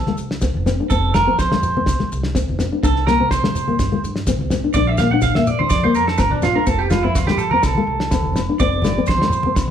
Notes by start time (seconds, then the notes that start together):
Already playing: A4
0.06 A3, snare, high conga
0.18 C2, maracas
0.31 snare
0.41 D2 C4, kick, snare, maracas
0.54 F1, high conga
0.66 C4, snare, low conga, maracas
0.80 D4
0.90 F1 C4 A4, kick, maracas
1.14 A3 A#4, snare, high conga, low conga, maracas
1.27 F2 C4
1.39 C5, kick, snare, maracas
1.52 A3, snare, high conga
1.63 low conga, maracas
1.77 C4, high conga
1.86 C2, kick, snare, maracas
1.99 A3, snare, high conga
2.12 C2, maracas
2.23 snare
2.35 D2 C4, kick, snare, maracas
2.48 F1, high conga
2.59 C4, snare, low conga, maracas
2.72 D4
2.83 C2 D4 A4, kick, maracas
2.96 snare
3.07 A#3 A#4, snare, high conga, maracas
3.20 C3 C4
3.31 C5, kick, snare, maracas
3.43 A3, snare, high conga
3.55 low conga, maracas
3.68 A#3, high conga
3.79 G2, kick, snare, maracas
3.92 A3, high conga
4.04 G2, maracas
4.16 snare
4.27 A1 C4, kick, snare, maracas
4.39 C2, high conga
4.50 C4, snare, low conga, maracas
4.64 D4
4.74 A#1 D4 D5, kick, maracas
4.87 E5
4.97 A#3 F5, snare, high conga, low conga, maracas
5.11 A#2 D4 F#5
5.21 F5, kick, snare, low conga, maracas
5.35 A#3 E5, snare, high conga
5.47 D5, low conga, maracas
5.59 D4 C5, high conga
5.70 F2 D5, kick, snare, maracas
5.83 A#3 C5, high conga
5.94 F2 A#4, maracas
6.07 A4, snare
6.18 G1 C4 A#4, kick, snare, maracas
6.30 A#1 D4, high conga
6.42 C4 F4, snare, low conga, maracas
6.55 D4 A#4
6.67 F1 C4 A4, kick, maracas
6.79 G4
6.90 A3 F4, snare, high conga, low conga, low agogo, maracas
7.03 F2 C4 E4
7.15 F4, kick, snare, maracas
7.27 A3 G4, snare, high conga, low agogo
7.37 A4, low conga, maracas
7.51 C4 A#4, high conga
7.62 C2 A4, kick, snare, low agogo, maracas
7.75 A3, high conga
7.87 C2
8.00 snare
8.11 D2 C4, kick, snare, low agogo, maracas
8.23 F1, high conga
8.33 C4, snare, low conga, low agogo, maracas
8.49 D4
8.60 F1 C4 D5, kick, maracas
8.82 A3, snare, high conga, low conga, low agogo, maracas
8.96 F2 C4
9.06 C5, kick, snare, maracas
9.18 snare, high conga, low agogo
9.23 A3
9.30 low conga, maracas
9.43 C4, high conga
9.56 C2, kick, snare, low agogo, maracas
9.67 high conga